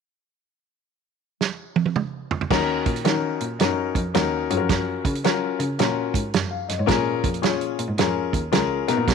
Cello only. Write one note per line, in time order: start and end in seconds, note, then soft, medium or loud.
2.51 2.79 D#2 medium
2.86 3.02 A#2 medium
3.05 3.34 D#3 medium
3.41 3.59 A#2 medium
3.59 3.88 F#2 medium
3.95 4.11 F2 medium
4.15 4.29 D#2 medium
4.50 4.58 F#2 medium
4.60 4.68 F2 medium
4.70 4.98 F#2 medium
5.05 5.21 C#3 medium
5.25 5.53 F#3 medium
5.60 5.75 C#3 medium
5.79 6.08 A#2 medium
6.14 6.30 G#2 medium
6.34 6.48 F#2 medium
6.70 6.77 F#2 medium
6.79 6.87 G#2 medium
6.88 7.17 A#2 medium
7.24 7.54 F2 medium
7.79 7.87 A#2 medium
7.88 7.96 G#2 medium
7.98 8.33 F2 medium
8.33 8.49 D#2 medium
8.53 8.67 C#2 medium
8.88 8.96 B2 medium
8.98 9.06 A#2 medium
9.08 9.14 B2 medium